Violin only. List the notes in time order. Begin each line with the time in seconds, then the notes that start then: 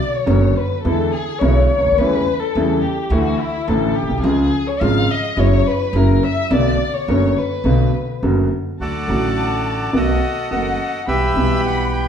Already playing: D5
0.15 C#5
0.57 B4
0.83 A4
1.12 G#4
1.39 C#5
1.67 C#5
1.97 B4
2.39 A4
2.81 G4
3.10 F#4
3.40 E4
3.67 A4
3.95 G4
4.23 G#4
4.67 C#5
4.81 F5
5.11 D#5
5.40 C#5
5.67 B4
5.96 A#4
6.23 E5
6.53 D5
6.94 C#5
7.38 B4
8.81 A5
9.94 F#5
11.06 B5